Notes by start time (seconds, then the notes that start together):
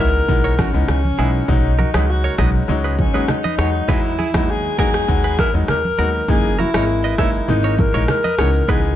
0.00 C#2 E3 G#3 B3 D#4 A#4
0.28 B1 E3 G#3 B3 D#4, kick, low conga
0.44 A#4 C#5
0.59 C#4 F#4 A#4, kick, cross-stick, high conga
0.74 C#2 E3 G#3 B3 D#4
0.88 C#2 C#4, cross-stick, low conga
1.05 high conga
1.18 B1 E3 G#3 B3 D#4 E4 G#4
1.48 B1 F#3 G#3 C#4 D#4, kick
1.79 F#4 A#4, high conga
1.94 C#2 F#3 G#3 C#4 D#4 G#4 B4, cross-stick, high conga
2.10 F#4
2.24 A#4 C#5
2.38 B1 F#3 G#3 C#4 D#4 B4 D#5, kick, cross-stick
2.68 C#2 F#3 G#3 C#4 D#4, low conga
2.84 G#4 B4
2.99 C#4, kick, high conga
3.14 D#2 F#3 G#3 C#4 D#4 G#4 B4
3.28 D#4, cross-stick, low conga
3.44 B4 D#5, high conga
3.58 E2 F#3 G#3 B3 D#4 G#4 C#5, cross-stick
3.88 E2 F#3 G#3 B3 D#4 E4 G#4 B4, kick, low conga
4.19 E4 G#4, high conga
4.34 D#2 F#3 G#3 B3 D#4, kick, cross-stick, high conga
4.50 G#4
4.78 E2 F#3 G#3 B3 D#4 F#4 G#4 A#4, kick
4.94 cross-stick
5.08 D#2 F#3 G#3 B3 D#4, kick, low conga
5.24 G#4 B4
5.39 E4 G#4 A#4, kick, cross-stick, high conga
5.54 E2 F#3 G#3 B3 D#4
5.68 E2 A#4, cross-stick, low conga
5.85 high conga
5.98 D#2 F#3 G#3 B3 D#4 F#4 A#4
6.28 F#1 E3 G#3 A#3 D#4 G#4, kick, shaker
6.44 shaker
6.58 E4 F#4 A#4, high conga, shaker
6.74 G#1 E3 G#3 A#3 A#4 C#5 D#5, cross-stick, high conga, shaker
6.88 shaker
7.04 B4 D#5, shaker
7.18 F#1 E3 G#3 A#3 D#4 E4 C#5 E5, kick, cross-stick, shaker
7.34 shaker
7.48 G#1 E3 G#3 A#3 D#4, low conga, shaker
7.64 A#4 C#5, shaker
7.79 A#4, kick, high conga, shaker
7.94 A#1 E3 G#3 A#3 D#4 A#4 C#5, shaker
8.08 A#4, cross-stick, low conga, shaker
8.24 B4 D#5, high conga, shaker
8.38 C#2 E3 G#3 B3 D#4 G#4 C#5, cross-stick, shaker
8.54 shaker
8.68 C#2 E3 G#3 B3 D#4 G#4 B4, kick, shaker
8.84 shaker